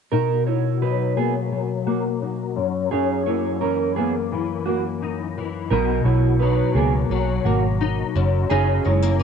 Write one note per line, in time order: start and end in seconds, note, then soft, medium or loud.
0.11 2.56 B2 medium
0.11 2.21 D#4 medium
0.11 0.45 D#4 medium
0.11 0.45 A#4 medium
0.47 0.80 E4 soft
0.47 0.80 C#5 soft
0.81 1.51 F#3 medium
0.81 1.15 D#4 soft
0.81 1.15 B4 medium
1.16 1.86 A#3 medium
1.16 1.34 B3 soft
1.16 1.33 G#4 medium
1.51 3.61 F#3 medium
1.86 3.26 A#3 medium
1.86 2.04 A#3 soft
1.86 2.03 F#4 medium
2.22 2.92 D#4 medium
2.56 2.90 F#2 medium
2.91 5.71 F#2 medium
2.91 3.25 C#4 medium
2.91 5.02 D#4 medium
2.91 3.24 G#4 medium
3.26 3.97 A#3 soft
3.26 3.60 E4 soft
3.26 3.59 C#5 medium
3.61 4.31 E3 medium
3.61 3.94 C#4 soft
3.61 3.94 A#4 medium
3.96 4.67 A#3 medium
3.96 4.13 B3 medium
3.96 4.13 G#4 medium
4.32 5.36 E3 medium
4.66 4.83 A#3 soft
4.66 6.76 A#3 medium
4.66 4.82 F#4 medium
5.02 5.72 D#4 medium
5.38 5.79 E3 medium
5.70 5.99 B1 medium
5.70 8.16 B2 medium
5.70 6.04 D#4 medium
5.70 7.80 D#4 medium
5.70 6.04 A#4 medium
6.05 6.61 B1 medium
6.05 6.39 E4 soft
6.05 6.39 C#5 medium
6.39 7.11 F#3 medium
6.39 6.74 D#4 soft
6.39 6.73 B4 medium
6.75 7.03 C#2 medium
6.75 7.45 A#3 medium
6.75 6.92 B3 soft
6.75 6.92 G#4 medium
7.10 7.38 B1 medium
7.10 8.88 F#3 medium
7.45 8.01 G#1 medium
7.45 8.84 A#3 medium
7.45 7.62 A#3 soft
7.45 7.62 F#4 medium
7.81 8.50 D#4 medium
8.16 8.43 F#1 medium
8.16 8.49 F#2 medium
8.50 8.79 F#1 loud
8.50 9.23 F#2 medium
8.50 8.84 C#4 medium
8.50 9.23 D#4 medium
8.50 8.83 G#4 medium
8.85 9.23 F#1 medium
8.85 9.02 G#3 soft
8.85 9.19 E4 soft
8.85 9.19 C#5 medium
9.02 9.23 A#3 soft
9.19 9.23 E3 medium